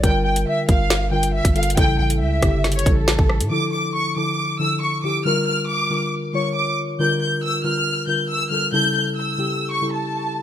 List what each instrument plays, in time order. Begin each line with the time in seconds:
0.03 808-style bass G1, synth keys D3 G3 F4 A#4, violin section G5, kick, closed hi-hat
0.25 violin section G5
0.36 closed hi-hat
0.48 violin section E5
0.68 808-style bass G1, synth keys D3 G3 F4 A#4, violin section F5, kick, closed hi-hat
0.90 snare, closed hi-hat
1.11 synth keys D3 G3 F4 A#4, violin section G5
1.23 closed hi-hat
1.34 violin section E5
1.45 808-style bass G1, kick, closed hi-hat
1.54 synth keys D3 G3 F4 A4, violin section F5, closed hi-hat
1.63 closed hi-hat
1.70 closed hi-hat
1.76 808-style bass A1, synth keys C#3 G3 E4 A4, violin section G5, kick, closed hi-hat
1.99 808-style bass A1, violin section G5
2.10 closed hi-hat
2.21 808-style bass C#2, violin section E5
2.41 808-style bass G1, synth keys C#3 G3 E4 G4, kick, cross-stick, closed hi-hat
2.64 snare, closed hi-hat
2.72 violin section C#5, closed hi-hat
2.79 closed hi-hat
2.85 808-style bass A1, synth keys C#3 G3 E4 A4, kick, closed hi-hat
2.97 violin section A4
3.08 snare
3.19 808-style bass A1, kick
3.30 cross-stick
3.40 808-style bass A2, closed hi-hat
3.50 synth keys D3 F3 E4 A4, violin section D6
3.73 violin section D6
3.95 violin section C#6
4.16 synth keys D3 F3 E4 A4, violin section D6
4.59 synth keys D3 F3 E4 A4, violin section E6
4.82 violin section C#6
5.03 synth keys D3 F3 E4 G4, violin section D6
5.25 synth keys D3 G3 F4 A#4, violin section F6
5.47 violin section F6
5.68 violin section D6
5.90 synth keys D3 G3 F4 A#4
6.33 synth keys D3 G3 F4 C#5, violin section C#6
6.55 violin section D6
6.99 synth keys D3 G3 F4 A#4, violin section G6
7.21 violin section G6
7.43 violin section E6
7.64 synth keys D3 G3 F4 A#4, violin section F6
8.07 synth keys D3 G3 F4 A#4, violin section G6
8.29 violin section E6
8.50 synth keys D3 G3 F4 A4, violin section F6
8.72 synth keys C#3 G3 E4 A4, violin section G6
8.95 violin section G6
9.17 violin section E6
9.37 synth keys C#3 G3 E4 G4
9.71 violin section C#6
9.81 synth keys C#3 G3 E4 A4
9.93 violin section A5